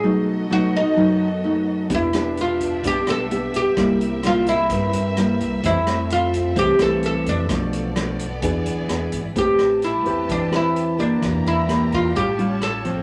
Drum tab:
HH |--------|xxxxxxxx|xxxxxxxx|xxxxxxxx|
SD |--------|-r---r--|r-r---r-|-r---r--|
BD |--------|o--oo--o|o--oo--o|o--oo--o|

HH |xxxxxxxx|xxxxxxxx|xxxxxxxx|
SD |r-r---r-|-r---r--|r-r---r-|
BD |o--oo--o|o--oo--o|o--oo--o|